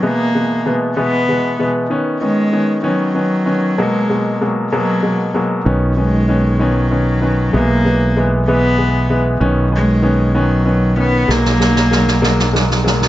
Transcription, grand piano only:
0.02 B2 E3 G#3 B3
0.34 B2 E3 G#3 B3
0.66 B2 E3 G#3 B3
0.97 B2 E3 G#3 B3
1.28 B2 E3 G#3 B3
1.59 B2 E3 G#3 B3
1.90 D#3 B3 C#4
2.21 D#3 B3 C#4
2.53 D#3 B3 C#4
2.83 D#3 B3 C#4
3.15 D#3 B3 C#4
3.46 D#3 B3 C#4
3.78 B2 F#3 G#3 A#3
4.09 B2 F#3 G#3 A#3
4.41 B2 F#3 G#3 A#3
4.72 B2 F#3 G#3 A#3
5.02 B2 F#3 G#3 A#3
5.34 B2 F#3 G#3 A#3
5.65 D#3 B3 C#4
5.97 D#3 B3 C#4
6.28 D#3 B3 C#4
6.59 D#3 B3 C#4
6.91 D#3 B3 C#4
7.22 D#3 B3 C#4
7.53 E3 G#3 B3
7.85 E3 G#3 B3
8.16 E3 G#3 B3
8.47 E3 G#3 B3
8.78 E3 G#3 B3
9.09 E3 G#3 B3
9.40 D#3 B3 C#4
9.71 D#3 B3 C#4
10.02 D#3 B3 C#4
10.34 D#3 B3 C#4
10.65 D#3 B3 C#4
10.97 D#3 B3 C#4
11.28 F#3 G#3 A#3
11.60 F#3 G#3 A#3
11.91 F#3 G#3 A#3
12.22 F#3 G#3 A#3
12.53 F#3 G#3 A#3
12.84 F#3 G#3 A#3

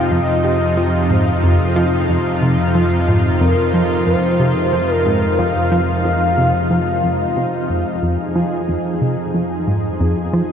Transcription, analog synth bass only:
0.11 F2
0.44 C3
0.77 F3
1.10 G#2
1.43 F2
1.76 F3
2.09 F2
2.42 C3
2.75 F3
3.08 G#2
3.41 F2
3.74 F3
4.07 F2
4.40 C3
4.73 F3
5.06 G#2
5.39 F2
5.72 F3
6.05 F2
6.38 C3
6.71 F3
7.04 F2
7.37 C3
7.70 F2
8.03 F2
8.36 F3
8.69 F2
9.02 C3
9.34 F3
9.67 G#2
10.00 F2
10.33 F3

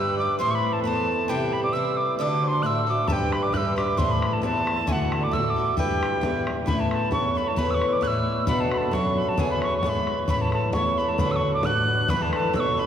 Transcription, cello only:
Already playing: G2
0.38 A2
0.83 E2
1.28 C3
1.73 C3
2.18 D3
2.62 A2
3.08 G2
3.53 G2
3.97 A2
4.42 E2
4.87 D3
5.32 A2
5.76 G2
6.21 E2
6.67 A2
7.12 E2
7.57 E2
8.02 A2
8.47 B2
8.92 F#2
9.37 E2
9.82 G#2
10.28 A2
10.73 E2
11.18 D3
11.63 A2
12.09 E3
12.53 B2

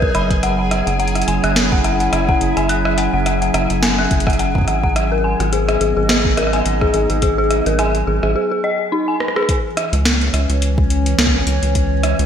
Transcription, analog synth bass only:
Already playing: B1
0.14 F#1
0.87 F#1
1.28 F#1
1.44 F#1
2.13 F#1
2.41 F#1
2.57 F#1
3.13 F#1
3.54 F#1
3.70 F#1
4.11 F#1
4.68 G#1
5.40 G#1
5.81 G#1
5.97 G#1
6.66 G#1
6.94 G#1
7.10 G#1
7.66 G#1
8.07 G#1
8.23 G#1
9.93 C#2
10.34 C#2
10.49 C#2
11.18 C#2
11.47 C#2
11.63 C#2
12.19 C#2

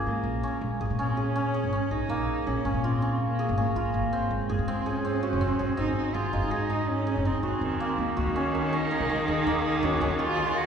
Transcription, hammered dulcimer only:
Already playing: A#3 C#4 F4 G#4
0.43 C#4
0.81 G#4
0.99 C#4
1.17 G#4
1.36 C#4
1.54 G#4
1.73 C#4
1.91 G#4
2.09 A#3
2.47 G#4
2.65 C#4
2.84 F4
3.02 C#4
3.39 G#4
3.58 C#4
3.76 F4
4.13 C4
4.49 G#4
4.68 C4
4.86 G#4
5.05 C4
5.23 F#4
5.41 C4
5.59 G#4
5.77 C4
6.14 G#4
6.33 D#4
6.51 G#4
6.70 D#4
7.07 G#4
7.25 D#4
7.43 F#4
7.80 A#3
8.17 F#4
8.36 C#4
8.55 A#4
8.73 C#4
8.91 A#4
9.10 C#4
9.28 G#4
9.47 A#3
9.83 F#4
10.01 C#4
10.19 F#4
10.37 C#4

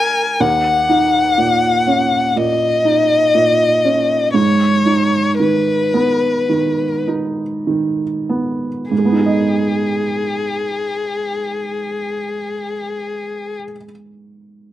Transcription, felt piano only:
Already playing: C#4 E4 G#4
0.40 D#2
0.89 D#4
1.38 A#2
1.87 C#4
2.36 A#2
2.85 D#4
3.35 A#2
3.85 C#4
4.34 G#2
4.86 D#4
5.40 D#3
5.94 B3
6.49 D#3
7.08 D#4
7.67 D#3
8.29 B3
8.91 G#2
8.98 G#3
9.05 B3
9.12 D#4
9.19 G#4
9.26 D#5

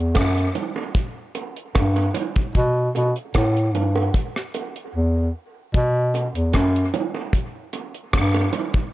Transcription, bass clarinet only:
Already playing: E2
0.16 F#2
1.76 G2
2.55 B2
2.95 B2
3.35 A2
3.75 G2
4.95 E2
5.75 B2
6.36 E2
6.54 F#2
8.14 G2

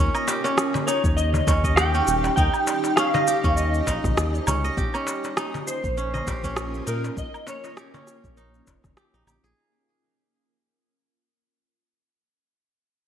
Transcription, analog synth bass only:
1.04 D#2
1.47 D#2
2.07 D#1
2.37 D#2
3.44 D#2
3.87 A#1
4.04 A#1
4.17 D#2
4.47 C#2
4.77 A#1
5.84 A#1
6.27 A#1
6.87 A#2
7.17 A#1
8.24 A#1
8.67 F1
8.84 F1
9.14 A#1
9.26 A#1
9.44 A#1

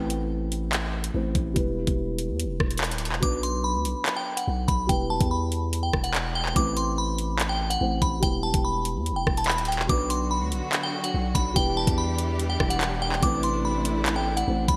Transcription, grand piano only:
Already playing: A3 C4 E4 B4
1.13 A3 C4 E4 C5
1.54 G3 B3 E4
1.58 B4
3.20 F#3 B3 D4
3.25 B4
4.87 G3 B3 E4
4.92 B4
6.54 A3 C4 E4
6.58 B4
7.80 A3 C4 E4 C5
8.20 G3 B3 E4
8.25 B4
9.87 F#3 B3 D4
9.92 B4
11.54 G3 B3 E4
11.58 B4
13.20 A3 C4 E4
13.25 B4
14.47 A3 C4 E4 C5

